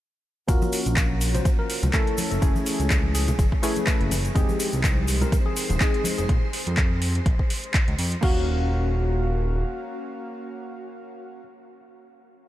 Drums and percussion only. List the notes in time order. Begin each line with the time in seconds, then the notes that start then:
0.48 kick, closed hi-hat, cabasa
0.62 high conga, cabasa
0.72 open hi-hat, cabasa
0.86 closed hi-hat, cabasa
0.97 kick, clap, closed hi-hat, cabasa
1.10 high conga
1.21 open hi-hat, cabasa
1.34 closed hi-hat, low conga, cabasa
1.45 kick, closed hi-hat, high conga, cabasa
1.70 open hi-hat, cabasa
1.83 closed hi-hat, high conga, low conga, cabasa
1.93 kick, clap, closed hi-hat, cabasa
2.07 closed hi-hat
2.17 open hi-hat, high conga, cabasa
2.31 closed hi-hat, cabasa
2.42 kick, closed hi-hat, cabasa
2.56 high conga, cabasa
2.66 open hi-hat, cabasa
2.80 closed hi-hat, cabasa
2.90 kick, clap, closed hi-hat, cabasa
3.04 high conga
3.15 open hi-hat, cabasa
3.28 closed hi-hat, low conga, cabasa
3.39 kick, closed hi-hat, high conga, cabasa
3.52 kick
3.63 open hi-hat, cabasa
3.76 closed hi-hat, high conga, cabasa
3.87 kick, clap, closed hi-hat, cabasa
4.01 closed hi-hat
4.11 open hi-hat, high conga, cabasa
4.25 closed hi-hat, cabasa
4.36 kick, closed hi-hat, cabasa
4.49 high conga, cabasa
4.60 open hi-hat, cabasa
4.73 closed hi-hat, cabasa
4.84 kick, clap, closed hi-hat, cabasa
4.97 high conga
5.08 open hi-hat, cabasa
5.21 closed hi-hat, low conga, cabasa
5.32 kick, closed hi-hat, high conga, cabasa
5.56 open hi-hat, cabasa
5.69 closed hi-hat, high conga, low conga, cabasa
5.80 kick, clap, closed hi-hat, cabasa
5.94 closed hi-hat
6.04 open hi-hat, high conga, cabasa
6.18 closed hi-hat, cabasa
6.29 kick, closed hi-hat
6.53 open hi-hat
6.67 closed hi-hat
6.77 kick, clap, closed hi-hat
7.02 open hi-hat
7.15 closed hi-hat
7.26 kick, closed hi-hat
7.39 kick
7.50 open hi-hat
7.64 closed hi-hat
7.74 kick, clap, closed hi-hat
7.88 closed hi-hat
7.99 open hi-hat
8.12 closed hi-hat
8.23 kick, crash